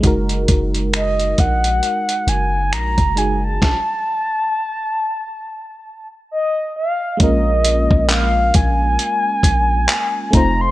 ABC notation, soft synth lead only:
X:1
M:4/4
L:1/16
Q:"Swing 16ths" 1/4=67
K:Gb
V:1 name="Soft synth lead"
z4 e2 g4 a2 b2 a =a- | =a8- a3 z e2 f2 | [K:Bbm] e4 f2 a8 b c' |]